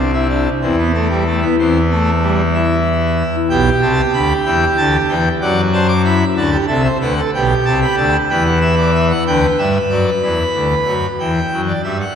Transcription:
pipe organ
Already playing: C2 C3 D4
0.13 E4
0.29 D4
0.61 E2 E3 C4
0.78 B3
0.94 A3
1.09 G3
1.27 A3
1.42 B3
1.59 E2 E3 C4
1.91 A3
2.22 G3
2.54 E4
3.50 B1 B2 G4 G5
3.81 C2 C3 A5
4.13 D2 D3 B5
4.45 E2 E3 G5
4.77 D2 D3 A5
5.09 E2 E3 G5
5.41 F#2 F#3 D5 F#5
5.73 C5 A5
5.88 D6
6.05 E4 B5
6.37 D2 D3 F#4 A5
6.52 G4
6.68 C2 C3 A4 E5
6.84 C5
7.01 D2 D3 B4 F#5
7.17 A4
7.34 B1 B2 G4 G5
7.65 C2 C3 A5
7.82 B5
7.96 D2 D3 A5
8.29 E2 E3 B4 G5
8.45 F#5
8.61 E5
8.78 D5
8.95 E5
9.11 F#5
9.27 D2 D3 B4 G5
9.58 G2 G3 E5
9.90 F#2 F#3 D5
10.23 E2 E3 B5
10.54 D2 D3
10.86 F#2 F#3
11.19 E2 E3 G5
11.52 F#2 F#3
11.68 D5
11.83 G2 G3 E5
12.00 F#5

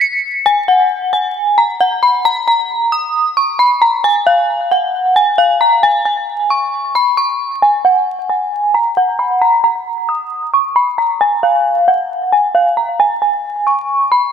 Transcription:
synth bell
0.01 C#7
0.46 G#5
0.68 F#5
1.13 G#5
1.58 A#5
1.81 F#5
2.03 B5
2.25 A#5
2.48 A#5
2.92 D#6
3.37 C#6
3.59 B5
3.82 A#5
4.04 G#5
4.26 F5
4.71 F#5
5.16 G#5
5.38 F5
5.61 A#5
5.83 G#5
6.05 G#5
6.50 C#6
6.95 B5
7.17 C#6
7.62 G#5
7.85 F#5
8.29 G#5
8.74 A#5
8.97 F#5
9.19 B5
9.41 A#5
9.64 A#5
10.09 D#6
10.54 C#6
10.76 B5
10.98 A#5
11.21 G#5
11.43 F5
11.88 F#5
12.32 G#5
12.55 F5
12.77 A#5
13.00 G#5
13.22 G#5
13.67 C#6
14.12 B5

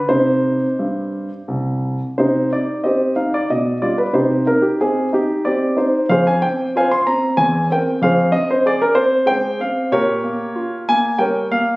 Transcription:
grand piano
0.09 C3 C4 D#4 C5
0.79 G2
1.48 C2
2.18 C3 D#4 G4 C5
2.52 D#4 D5
2.83 C4 G4 C5 D#5
3.16 D#4 F5
3.34 D5
3.50 B2 D#5
3.82 G3 F4 D5
3.98 B4
4.13 C3 D#4 G4 C5
4.46 D#4 A#4
4.62 G4
4.81 C4 G#4
5.13 D#4 G4
5.45 C4 G4 D5
5.76 D#4 C5
6.09 F2 G#4 C5 F5
6.27 G#5
6.42 C4 G5
6.76 F4 C5 F5 G#5
6.91 C6
7.06 C4 A#5
7.37 E2 G#5
7.70 C4 A#4 G5
8.02 F2 G#4 C5 F5
8.31 C4 D#5
8.51 C5
8.66 G#4 D5
8.82 A#4
8.95 C4 C5
9.26 G#3 C5 G5
9.60 C4 F5
9.92 A#2 G4 A#4 C#5
10.24 A#3
10.55 F4
10.88 A#3 G#5
11.19 G3 A#4 C#5 G5
11.51 A#3 F5

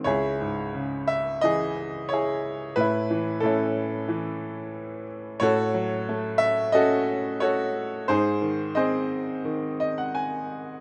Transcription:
upright piano
0.04 C#2 E4 G#4 C#5
0.41 G#2
0.74 C#3
1.08 E5
1.41 E3 G#4 D#5
2.09 C#5
2.13 E4 G#4
2.76 A2 B4
2.80 E4
3.10 E3
3.40 A2 A4
3.45 C#4 E4
4.09 E3
5.40 A2 F#4 A4 C#5
5.74 F#3
6.09 A3
6.38 E5
6.72 C#4 F#4 A4 D#5
7.40 F#4 A4 C#5
8.08 G#2 D#4 G#4 C5
8.42 D#3
8.75 C4 G#4 C5 D#5
9.45 D#3
9.80 D#5
9.98 F#5
10.15 G#5

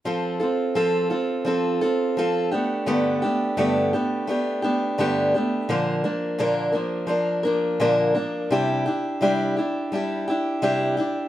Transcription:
steel-string acoustic guitar
0.05 F3 C4 F4 A4
0.40 C4 F4 A4
0.75 F3 C4 F4 A4
1.10 C4 F4 A4
1.45 F3 C4 F4 A4
1.81 C4 F4 A4
2.17 F3 C4 F4 A4
2.51 A3 B3 D4 G4
2.86 G2 D3 A3 B3 D4 G4
3.22 A3 B3 D4 G4
3.57 G2 D3 A3 B3 D4 G4
3.93 A3 B3 D4 G4
4.27 A3 B3 D4 G4
4.62 A3 B3 D4 G4
4.98 G2 D3 A3 B3 D4 G4
5.34 A3 B3 D4 G4
5.69 A#2 D3 F3 A#3 D4 A#4
6.04 F3 A#3 D4 A#4
6.38 A#2 D3 F3 A#3 D4 A#4
6.72 F3 A#3 D4 A#4
7.07 F3 A#3 D4 A#4
7.43 F3 A#3 D4 A#4
7.80 A#2 D3 F3 A#3 D4 A#4
8.15 F3 A#3 D4 A#4
8.51 C3 G3 D4 E4 G4
8.86 D4 E4 G4
9.21 C3 G3 D4 E4 G4
9.57 D4 E4 G4
9.92 G3 D4 E4 G4
10.28 D4 E4 G4
10.62 C3 G3 D4 E4 G4
10.97 D4 E4 G4

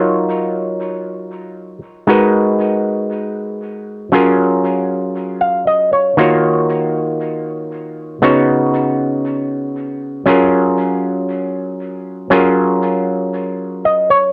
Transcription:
clav
Already playing: F#3 D#4 F4 A#4 C#5
2.07 G#3 D#4 F#4 A#4 B4
4.12 F#3 C#4 F4 G#4 A#4
5.41 F5
5.67 D#5
5.93 C#5
6.17 D#3 A#3 F4 F#4 C#5
8.22 C#3 B3 D#4 F#4 C#5
10.26 F#3 C#4 F4 G#4 A#4
12.30 F#3 C#4 F4 G#4 A#4
13.85 D#5
14.10 C#5

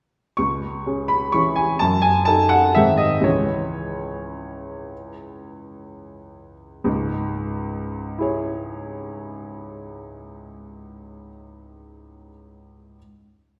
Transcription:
upright piano
0.37 C#2 C#6
0.86 C#4 G#4
1.08 B5
1.32 E3 C#4 G#4 C#6
1.56 G#5
1.79 F#2 A5
2.02 G#5
2.25 D#4 A4 A5
2.49 F#5
2.75 G#2 D#3 C4 G#4 E5
2.97 D#5
3.21 C#2 E3 C#4 G#4 C#5
6.84 C#2 G#2
8.18 E4 G#4 C#5

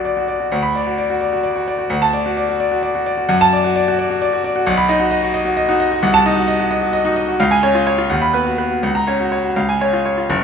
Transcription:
grand piano
Already playing: B1 F#4 D5 F#5 B5
0.05 D5
0.17 F#4
0.28 D5
0.40 F#4
0.52 D2 F#5
0.63 B5
0.75 D5
0.87 F#4
0.98 D5
1.10 F#4
1.21 D5
1.32 F#4
1.44 D5
1.56 F#4
1.68 D5
1.79 F#4
1.90 D2 F#5
2.02 A5
2.13 D5
2.26 F#4
2.37 D5
2.49 F#4
2.60 D5
2.72 F#4
2.83 D5
2.95 F#4
3.06 D5
3.18 F#4
3.29 F#2 F#5
3.41 A5
3.53 D5
3.64 F#4
3.76 D5
3.88 F#4
3.99 D5
4.10 F#4
4.22 D5
4.33 F#4
4.44 D5
4.56 F#4
4.67 B1 F#5
4.77 B5
4.89 D#4 D#5
5.00 F#4
5.11 D#5
5.23 F#4
5.34 D#5
5.45 F#4
5.57 D#5
5.69 D#4 F#4
5.80 D#5
5.91 F#4
6.03 C2 F#5
6.14 A5
6.26 D#4 D#5
6.36 F#4
6.48 D#5
6.59 F#4
6.71 D#5
6.82 F#4
6.93 D#5
7.05 D#4 F#4
7.16 D#5
7.28 F#4
7.40 C#2 F5
7.51 G#5
7.63 C#4 C#5
7.75 F4
7.87 C#5
7.98 F4
8.10 D#2 F#5
8.22 B5
8.34 B3 B4
8.46 F#4
8.58 B4
8.70 F#4
8.83 C#2 F#5
8.95 A#5
9.07 C#4 C#5
9.20 F#4
9.32 C#5
9.44 F#4
9.56 C#2 F5
9.69 G#5
9.81 C#4 C#5
9.93 F4
10.05 C#5
10.18 F4
10.30 F#1

